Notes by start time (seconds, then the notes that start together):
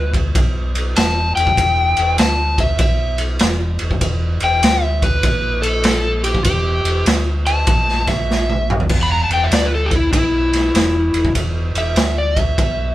Already playing: D2 B4
0.14 kick, ride
0.35 B1, kick, ride
0.75 ride
0.96 E1 A5, snare, ride
1.36 E1 G5, ride
1.47 kick
1.57 E1, kick, ride
1.97 E1, ride
2.18 D2 A5, snare, ride
2.58 E5, kick, ride
2.79 B1 E5, kick, ride
3.18 ride
3.39 E1, snare, ride
3.79 E1, ride
3.91 kick
4.01 E1, kick, ride
4.40 E1 G5, ride
4.63 D2, snare, ride
4.83 E5
5.02 B4, kick, ride
5.23 A#1, kick, ride
5.62 A4, ride
5.84 snare, ride
6.24 G4, ride
6.35 kick
6.44 E1 G4, kick, ride
6.83 E1, ride
7.05 D2, snare, ride
7.46 A5, ride
7.67 A#1, kick, ride
7.88 snare
8.07 E5, kick, snare, ride
8.31 snare
8.50 high tom
8.70 mid tom
8.80 floor tom
8.89 E1, kick, crash
9.03 B5
9.12 A#5
9.24 A5
9.29 E1, ride
9.33 G5
9.44 E5
9.50 D2, snare, ride
9.54 D5
9.66 B4
9.75 A4
9.86 G4
9.91 kick, ride
9.96 E4
10.12 B1 E4, kick, ride
10.53 snare, ride
10.74 E1, snare, ride
11.14 E1, ride
11.25 kick
11.35 E1, kick, ride
11.74 E1 E5, ride
11.96 D2, snare, ride
12.18 D5
12.36 E5, kick, ride
12.58 B1, kick, ride